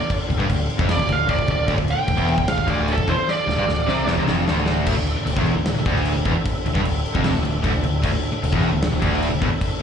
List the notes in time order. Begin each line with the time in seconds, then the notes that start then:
Already playing: D4 A4 F5
0.00 muted distorted electric guitar stroke, muted overdriven electric guitar stroke, muted picked electric bass stroke
0.10 kick, crash
0.30 D1 D2, kick, crash
0.40 G1 G2, kick
0.50 D1 D2, kick, crash
0.70 crash
0.79 F1 F2, kick
0.89 D5, snare, crash
0.99 D1 D2, kick
1.08 D1 D2 F5, kick, crash
1.28 D1 D2 D5, kick, crash
1.38 D1 D2, kick
1.47 D1 D2 D5, kick, crash
1.68 D1 D2, kick, crash
1.78 D1 D2, kick
1.88 G5, crash
1.98 muted picked electric bass stroke, muted distorted electric guitar stroke, muted overdriven electric guitar stroke
2.08 D1 D2, kick, crash
2.18 E1 E2, kick
2.28 crash
2.38 D1 D2, kick
2.48 F5, snare, crash
2.57 D1 D2, kick
2.67 D1 D2 D5, kick, crash
2.88 crash
2.92 A4
2.97 D1 D2, kick
3.08 E1 E2 C5, kick, crash
3.16 muted distorted electric guitar stroke, muted picked electric bass stroke, muted overdriven electric guitar stroke
3.28 D5, snare
3.47 D1 D2, snare
3.58 G1 G2
3.67 D1 D2, snare
3.86 C2 C3, snare
4.07 E1 E2, snare
4.18 C2 C3
4.28 F1 F2, snare
4.47 D1 D2, snare
4.66 snare
4.86 D1 D2 D4 A4 E5, kick, crash
4.97 D1 D2
5.07 crash
5.16 muted distorted electric guitar stroke, muted picked electric bass stroke, muted overdriven electric guitar stroke
5.26 D1 D2, crash
5.37 E1 E2, kick
5.46 crash
5.57 D1 D2
5.66 snare, crash
5.77 D1 D2
5.86 D1 D2, kick, crash
5.96 snare
6.05 crash
6.16 D1 D2
6.25 E1 E2, kick, crash
6.36 muted distorted electric guitar stroke, muted picked electric bass stroke, muted overdriven electric guitar stroke
6.46 kick, crash
6.66 D1 D2, crash
6.75 G1 G2, kick
6.85 D1 D2, crash
7.06 crash
7.15 F1 F2, kick
7.24 snare, crash
7.36 D1 D2
7.43 D1 D2, crash
7.47 D2
7.62 D1 D2, kick, crash
7.67 D2
7.73 D1 D2
7.83 D1 D2, crash
8.03 D1 D2, kick, crash
8.13 D1 D2
8.23 crash
8.32 muted distorted electric guitar stroke, muted overdriven electric guitar stroke, muted picked electric bass stroke
8.43 D1 D2, crash
8.53 E1 E2, kick
8.63 crash
8.72 D1 D2
8.82 snare, crash
8.92 D1 D2
9.02 D1 D2, kick, crash
9.13 snare
9.23 crash
9.32 D1 D2
9.42 E1 E2, kick, crash
9.51 muted distorted electric guitar stroke, muted picked electric bass stroke, muted overdriven electric guitar stroke
9.61 kick, crash